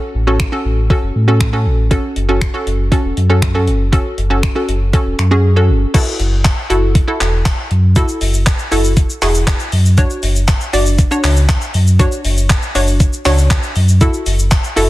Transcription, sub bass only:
0.15 0.48 A1 medium
0.65 0.90 A1 medium
1.03 1.11 F#1 loud
1.15 1.67 A2 loud
1.66 1.99 A1 loud
2.16 2.49 F#1 medium
2.67 2.91 F#1 medium
3.04 3.13 E1 medium
3.17 3.69 F#2 loud
3.67 4.01 F#1 medium
4.18 4.51 F#1 medium
4.68 4.93 F#1 medium
5.06 5.14 E1 loud
5.19 5.71 F#2 medium
5.69 5.86 F#1 loud
6.20 6.53 F#1 medium
6.70 7.03 F#1 medium
7.21 7.54 E1 medium
7.71 8.04 F#2 loud
8.21 8.54 F#1 medium
8.72 9.05 F#1 medium
9.22 9.55 E1 medium
9.73 10.06 F#2 loud
10.23 10.56 F#1 medium
10.73 11.07 F#1 loud
11.24 11.57 C#2 medium
11.74 12.07 F#2 loud
12.25 12.58 F#1 medium
12.75 13.08 F#1 medium
13.26 13.59 C#2 medium
13.76 14.09 F#2 medium
14.26 14.59 F#1 medium
14.77 14.90 F#1 medium

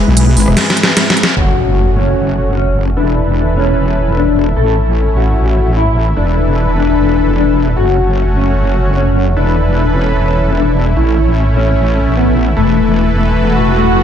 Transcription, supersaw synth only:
0.00 1.33 E3 medium
0.00 1.33 E4 medium
0.00 1.33 G#4 medium
0.00 1.33 B4 medium
1.37 2.95 A3 medium
1.37 2.95 C#4 medium
1.37 2.95 F#4 medium
2.97 4.55 E3 medium
2.97 7.73 E4 medium
2.97 4.55 A4 medium
2.97 4.55 B4 medium
4.57 6.15 A3 medium
4.57 6.15 C#4 medium
6.17 7.75 E3 medium
6.17 7.75 A4 medium
6.17 7.75 B4 medium
7.77 9.35 A3 medium
7.77 9.35 C#4 medium
7.77 9.35 F#4 medium
9.37 10.95 E3 medium
9.37 14.03 E4 medium
9.37 10.95 A4 medium
9.37 10.95 B4 medium
10.97 12.55 A3 medium
10.97 12.55 C#4 medium
12.57 14.03 E3 medium
12.57 14.03 A4 medium
12.57 14.03 B4 medium

